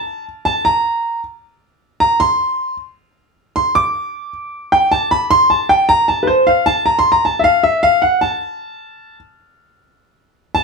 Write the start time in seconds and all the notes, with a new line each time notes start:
Already playing: A5
0.45 A5
0.65 A#5
2.00 A#5
2.20 C6
3.56 C6
3.75 D6
4.72 G5
4.92 A5
5.11 B5
5.31 C6
5.50 A5
5.69 G5
5.89 A#5
6.08 A5
6.23 B4
6.27 C5
6.47 F5
6.66 A5
6.86 A#5
6.99 C6
7.12 A#5
7.25 A5
7.39 E5
7.44 F5
7.63 E5
7.83 F5
8.02 F#5
8.21 A5
10.55 A5